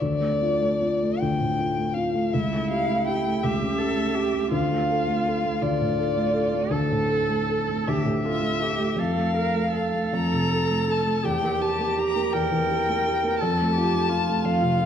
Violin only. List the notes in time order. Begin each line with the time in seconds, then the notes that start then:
0.00 D5
1.20 G5
1.94 F5
2.34 E5
2.70 F5
3.06 G5
3.42 E5
4.52 F5
5.62 D5
6.71 A4
7.87 E5
8.99 F5
10.15 A#5
10.91 A5
11.25 G5
11.61 A5
11.98 A#5
12.33 G5
13.39 A5
14.45 F5